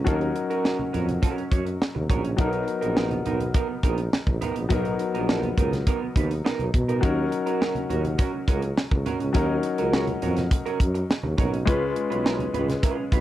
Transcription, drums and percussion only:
0.06 kick, closed hi-hat, muted conga
0.21 closed hi-hat
0.36 closed hi-hat
0.51 closed hi-hat
0.65 snare, muted conga
0.79 high conga
0.94 closed hi-hat, muted conga, low conga
1.09 closed hi-hat, high conga
1.23 kick, closed hi-hat
1.38 closed hi-hat
1.52 kick, closed hi-hat, muted conga
1.67 closed hi-hat
1.82 snare, muted conga
1.96 high conga
2.10 kick, closed hi-hat, muted conga, low conga
2.25 closed hi-hat
2.38 kick, closed hi-hat, muted conga
2.53 closed hi-hat
2.68 closed hi-hat
2.83 closed hi-hat
2.97 snare, muted conga
3.11 closed hi-hat, high conga
3.26 closed hi-hat, low conga
3.40 closed hi-hat, high conga
3.54 kick, closed hi-hat, muted conga
3.83 kick, closed hi-hat
3.98 closed hi-hat
4.13 snare, muted conga
4.27 kick, high conga
4.42 closed hi-hat, low conga
4.56 closed hi-hat
4.70 kick, closed hi-hat, low conga
4.85 closed hi-hat
4.99 closed hi-hat
5.15 closed hi-hat
5.29 snare, muted conga
5.43 closed hi-hat, high conga
5.58 kick, closed hi-hat, low conga
5.72 snare, closed hi-hat, high conga
5.87 kick, closed hi-hat, muted conga
6.16 kick, closed hi-hat, muted conga, high conga
6.31 closed hi-hat
6.46 snare
6.59 closed hi-hat, high conga
6.74 kick, closed hi-hat, low conga
6.89 closed hi-hat
7.03 kick, closed hi-hat
7.32 closed hi-hat, muted conga
7.47 closed hi-hat
7.62 snare, muted conga
7.75 closed hi-hat, high conga
7.90 closed hi-hat, muted conga, low conga
8.05 closed hi-hat, high conga
8.19 kick, closed hi-hat, muted conga
8.48 kick, closed hi-hat
8.62 closed hi-hat
8.77 snare, muted conga
8.91 kick, high conga
9.06 closed hi-hat, muted conga, low conga
9.20 closed hi-hat
9.34 kick, closed hi-hat, muted conga
9.63 closed hi-hat
9.78 closed hi-hat
9.93 snare, muted conga
10.07 closed hi-hat, high conga
10.22 closed hi-hat, muted conga, low conga
10.37 snare, closed hi-hat, high conga
10.51 kick, closed hi-hat, muted conga
10.66 closed hi-hat
10.80 kick, closed hi-hat
10.95 closed hi-hat
11.10 snare, muted conga
11.23 high conga
11.38 kick, closed hi-hat, muted conga, low conga
11.54 closed hi-hat
11.67 kick, closed hi-hat
11.96 closed hi-hat, muted conga
12.12 closed hi-hat
12.26 snare
12.39 closed hi-hat, high conga
12.54 closed hi-hat, low conga
12.68 snare, closed hi-hat, high conga
12.83 kick, closed hi-hat
13.12 kick, closed hi-hat

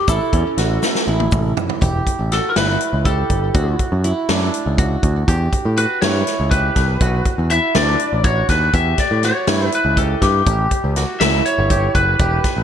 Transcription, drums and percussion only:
0.08 kick, closed hi-hat, shaker
0.33 kick, closed hi-hat
0.58 snare, closed hi-hat
0.82 snare, shaker
0.95 snare
1.20 high tom
1.32 kick, mid tom, shaker
1.57 floor tom, shaker
1.70 floor tom
1.82 kick, closed hi-hat
2.07 kick, closed hi-hat
2.32 snare, closed hi-hat
2.56 snare, closed hi-hat
2.81 closed hi-hat
3.05 kick, closed hi-hat
3.30 kick, closed hi-hat
3.54 kick, closed hi-hat
3.79 kick, closed hi-hat
4.04 closed hi-hat
4.29 snare, closed hi-hat
4.54 closed hi-hat
4.78 kick, closed hi-hat
5.03 kick, closed hi-hat
5.28 kick, closed hi-hat
5.53 kick, closed hi-hat
5.77 closed hi-hat
6.02 snare, closed hi-hat
6.27 snare, closed hi-hat
6.51 kick, closed hi-hat
6.76 kick, snare, closed hi-hat
7.01 kick, closed hi-hat
7.25 kick, closed hi-hat
7.50 closed hi-hat
7.75 snare, closed hi-hat
8.00 closed hi-hat
8.24 kick, closed hi-hat
8.49 kick, snare, closed hi-hat
8.73 kick, closed hi-hat
8.98 kick, snare, closed hi-hat
9.23 snare, closed hi-hat
9.47 snare, closed hi-hat
9.72 closed hi-hat
9.97 kick, closed hi-hat
10.22 kick, snare, closed hi-hat
10.46 kick, closed hi-hat
10.71 kick, closed hi-hat
10.96 snare, closed hi-hat
11.21 snare, closed hi-hat
11.46 closed hi-hat
11.70 kick, closed hi-hat
11.95 kick, closed hi-hat
12.19 kick, closed hi-hat
12.44 kick, snare, closed hi-hat

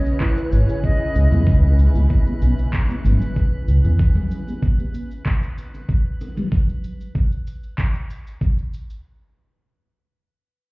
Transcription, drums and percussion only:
0.06 cabasa
0.20 kick, clap, cabasa
0.37 cabasa
0.52 cabasa
0.69 high bongo, cabasa
0.84 kick, cabasa
1.15 high bongo, cabasa
1.31 high bongo, low conga, cabasa
1.47 kick, cabasa
1.64 high bongo
1.79 cabasa
1.95 high conga, cabasa
2.10 kick, cabasa
2.27 high conga, cabasa
2.42 cabasa
2.59 cabasa
2.73 kick, clap, cabasa
2.89 high conga, cabasa
3.04 low conga, cabasa
3.22 cabasa
3.36 kick, cabasa
3.68 cabasa
3.84 high bongo, cabasa
3.99 kick, cabasa
4.15 high bongo, low conga
4.31 cabasa
4.47 high conga, cabasa
4.62 kick, cabasa
4.79 high conga, cabasa
4.95 cabasa
5.11 cabasa
5.26 kick, clap, cabasa
5.43 cabasa
5.58 cabasa
5.74 high bongo, cabasa
5.89 kick, cabasa
6.21 high bongo, cabasa
6.36 high bongo, low conga, cabasa
6.52 kick, cabasa
6.69 cabasa
6.84 cabasa
7.01 cabasa
7.15 kick, cabasa
7.32 cabasa
7.47 cabasa
7.63 cabasa
7.78 kick, clap, cabasa
7.95 cabasa
8.10 cabasa
8.27 cabasa
8.41 kick, cabasa
8.58 cabasa
8.74 cabasa
8.90 cabasa

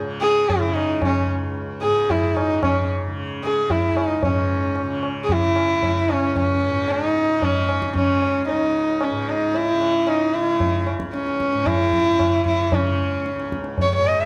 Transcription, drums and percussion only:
0.23 tabla te
0.49 tabla tin, tabla ge
0.76 tabla na
1.02 tabla na, tabla ge
1.82 tabla te
2.10 tabla tin, tabla ge
2.37 tabla na
2.63 tabla na, tabla ge
3.43 tabla te
3.70 tabla tin, tabla ge
3.97 tabla na
4.23 tabla tin, tabla ge
4.76 tabla na
5.03 tabla na
5.29 tabla tin, tabla ge
5.56 tabla na
5.83 tabla tin, tabla ge
6.09 tabla na
6.36 tabla tin, tabla ge
6.88 tabla na
7.42 tabla tin, tabla ge
7.69 tabla na
7.82 tabla ke
7.95 tabla tin, tabla ge
8.22 tabla na
8.48 tabla tin
9.01 tabla na
9.54 tabla tin
9.81 tabla na
10.07 tabla na
10.60 tabla tin, tabla ge
10.87 tabla na
11.00 tabla ke
11.14 tabla te
11.26 tabla te
11.40 tabla ke
11.53 tabla te
11.66 tabla na, tabla ge
11.93 tabla ge
12.19 tabla na, tabla ge
12.46 tabla ge
12.72 tabla tin, tabla ge
13.26 tabla te
13.40 tabla te
13.52 tabla ke
13.64 tabla te
13.78 tabla tin, tabla ge
14.04 tabla na

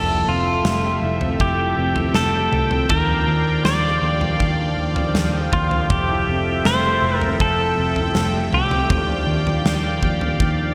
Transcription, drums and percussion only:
0.65 snare
1.21 floor tom
1.40 kick
1.96 floor tom
2.15 snare
2.53 floor tom
2.71 floor tom
2.89 kick, floor tom
3.65 snare
4.21 floor tom
4.40 kick
4.96 floor tom
5.15 snare
5.53 kick, floor tom
5.71 floor tom
5.90 kick, floor tom
6.65 snare
7.21 floor tom
7.40 kick
7.96 floor tom
8.15 snare
8.53 floor tom
8.71 floor tom
8.90 kick, floor tom
9.47 floor tom
9.66 snare
10.03 kick
10.21 floor tom
10.40 kick

